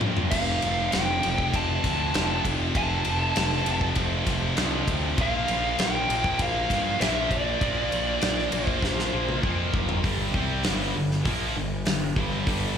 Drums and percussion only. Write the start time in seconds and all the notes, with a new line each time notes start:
0.01 mid tom
0.17 floor tom
0.31 kick, crash, splash
0.62 ride
0.92 snare, ride
1.23 ride
1.38 kick
1.54 kick, ride
1.84 kick, snare, ride
2.14 snare, ride
2.45 kick, ride
2.75 kick, ride
3.05 ride
3.36 snare, ride
3.52 snare
3.66 ride
3.81 kick
3.95 kick, ride
4.27 kick, snare, ride
4.57 snare, ride
4.88 kick, ride
5.18 kick, ride
5.48 ride
5.79 snare, ride
6.10 ride
6.24 kick
6.39 kick, ride
6.70 kick, snare, ride
7.01 snare, ride
7.31 kick, ride
7.61 kick, ride
7.92 ride
8.21 snare, ride
8.39 snare
8.52 ride
8.67 kick
8.82 kick, snare
8.99 snare
9.29 mid tom
9.43 kick
9.74 kick
9.89 floor tom
10.04 kick, open hi-hat
10.34 kick
10.63 snare, open hi-hat
11.11 snare
11.25 kick, open hi-hat
11.85 snare, open hi-hat
12.16 kick
12.47 kick, open hi-hat